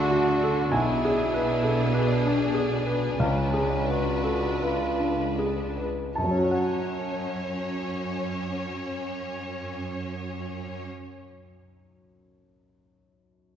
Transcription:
Already playing: D2 D3 D4 F#4 G#4 A4 A5
0.11 F#4
0.43 A4
0.72 B1 B2 D4 E4 G#4 G#5
1.05 G#4
1.34 B4
1.63 A4
1.94 D4 B4
2.26 D4
2.54 G#4
2.87 B4
3.19 C#2 C#4 D4 B4 F5
3.54 G#4
3.89 F#4 B4
4.24 A4
4.60 F4 B4
4.99 D4
5.39 G#4
5.78 B4
6.15 F#2 C#4 C#5 A5
6.24 F#3
6.31 C#4
6.38 F#4
6.45 C#5
6.51 F#5

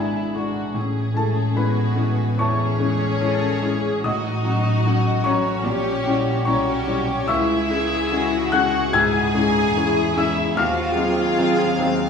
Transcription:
Already playing: G#1 G#2 G#3 D4 E4 G#4 A4 B4 E5 G#5 A5 B5
0.34 G#3 D4 E4 F#4
0.74 A1 A2 C#4 G#4
1.13 G#3 A3 C#4 E4 A4 A5
1.18 A4
1.55 G#3 B3 C#4 E4 F#4 B4 B5
1.95 G#3 C#4 E4
2.38 E2 C#4 E4 G#4 C#5 A5 C#6
2.79 G#3 C#4 E4 G#4
3.21 G#3 C#4 E4 A4
3.61 G#3 C#4 E4 G#4
4.04 A1 A2 D#4 F#4 D#5 D#6
4.44 F#3 C#4 F#4
4.85 F#3 C#4 F#4
5.24 F#3 C#4 F#4 C#5 A#5 C#6
5.64 A#1 A#2 G4
6.07 G3 C#4 E4 F#4
6.45 B1 G3 C#4 E4 G4 C#5 A#5 C#6
6.87 G3 C#4 E4
7.28 C#2 E4 G#4 E5 C#6 E6
7.70 G#3 C#4 E4 G#4
8.12 G#3 C#4 E4 F#4
8.52 G#3 C#4 E4 F#4 F#5 F#6
8.93 G#2 E4 G#4 G#5 E6 G#6
9.34 G#3 C#4 D#4 E4
9.77 E2 G#3 C#4 E4
10.16 G#3 C#4 E4 E5 E6
10.55 D#2 C4 F4 F#4 F5 F6
10.96 F#3 C4 D#4 G#4
11.38 F#3 C4 D#4
11.79 F#3 C4 D#4

